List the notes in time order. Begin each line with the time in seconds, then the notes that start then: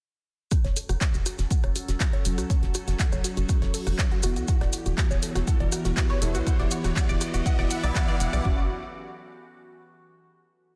0.51 F#3 C#4 F#4 A4, kick, cross-stick, closed hi-hat, riser, maracas
0.64 F#1 C#5, snare, closed hi-hat
0.76 A4, closed hi-hat, open hi-hat, maracas
0.89 F#1 F#4, cross-stick, closed hi-hat, maracas
1.01 C#5, kick, snare, clap, closed hi-hat, maracas
1.14 F#1 F#4, closed hi-hat, maracas
1.26 F#4, cross-stick, closed hi-hat, open hi-hat, maracas
1.38 F#1 F#4, snare, closed hi-hat, maracas
1.51 F#5, kick, closed hi-hat, maracas
1.64 F#1 C#5, cross-stick, closed hi-hat
1.76 F#4, closed hi-hat, open hi-hat, maracas
1.88 F#1 F#4, snare, closed hi-hat, maracas
2.00 F#4, kick, cross-stick, snare, clap, closed hi-hat, maracas
2.13 C#5, closed hi-hat
2.25 F#1 F#3 C#4 F#4 A4, closed hi-hat, open hi-hat, maracas
2.38 C#2 F#4, cross-stick, closed hi-hat, maracas
2.50 C#5, kick, closed hi-hat, maracas
2.63 F#1 F#4, snare, closed hi-hat
2.74 F#4, cross-stick, closed hi-hat, open hi-hat, maracas
2.88 F#1 F#4, snare, closed hi-hat, maracas
2.99 F#5, kick, snare, clap, closed hi-hat, maracas
3.12 F#1 C#5, cross-stick, closed hi-hat, maracas
3.24 F#4, snare, closed hi-hat, open hi-hat, maracas
3.37 F#1 F#4, closed hi-hat, maracas
3.49 F#4, kick, cross-stick, closed hi-hat, maracas
3.62 F#1 C#5, snare, closed hi-hat
3.74 A4, open hi-hat, maracas
3.87 F#1 F#4, cross-stick, closed hi-hat, maracas
3.99 C#5, kick, snare, clap, closed hi-hat, maracas
4.12 F#4, closed hi-hat
4.23 F#1 E3 B3 E4 F#4, cross-stick, closed hi-hat, open hi-hat, maracas
4.36 C#2 F#4, closed hi-hat, maracas
4.48 E3 B3 G4 F#5, kick, closed hi-hat, maracas
4.61 E1 D5, cross-stick, snare, closed hi-hat
4.73 F#4, closed hi-hat, open hi-hat, maracas
4.86 E1 F#4, closed hi-hat, maracas
4.98 F#4, kick, cross-stick, snare, clap, closed hi-hat, maracas
5.11 E1 C#5, closed hi-hat, maracas
5.22 A4, closed hi-hat, open hi-hat, maracas
5.35 E1 F#4, cross-stick, snare, closed hi-hat, maracas
5.47 F#5, kick, closed hi-hat, maracas
5.60 E1 D5, closed hi-hat
5.72 F#4, cross-stick, closed hi-hat, open hi-hat, maracas
5.85 E1 F#4, snare, closed hi-hat, maracas
5.97 F#4, kick, snare, clap, closed hi-hat, maracas
6.10 C#5, cross-stick, closed hi-hat
6.22 E1 E3 B3 E4 A4, closed hi-hat, open hi-hat, maracas
6.35 B1 F#4, closed hi-hat, maracas
6.47 F#5, kick, cross-stick, closed hi-hat, maracas
6.59 E1 D5, snare, closed hi-hat
6.71 F#4, closed hi-hat, open hi-hat, maracas
6.84 E1 F#4, cross-stick, snare, closed hi-hat, maracas
6.96 F#5, kick, snare, clap, closed hi-hat, maracas
7.09 E1 D5, closed hi-hat, maracas
7.21 F#4, cross-stick, snare, closed hi-hat, open hi-hat, maracas
7.34 E1 F#4, closed hi-hat, maracas
7.46 F#5, kick, closed hi-hat, maracas
7.59 E1 D5, cross-stick, snare, closed hi-hat
7.71 F#5, open hi-hat, maracas
7.83 B1 E3 B3 E4 D5, closed hi-hat, maracas
7.95 F#5, kick, cross-stick, snare, clap, closed hi-hat, maracas
8.08 D5, closed hi-hat
8.20 E1 F#5, closed hi-hat, open hi-hat, maracas
8.33 B1 D5, cross-stick, closed hi-hat, maracas
8.45 F#1 F#3 C#4 F#4, kick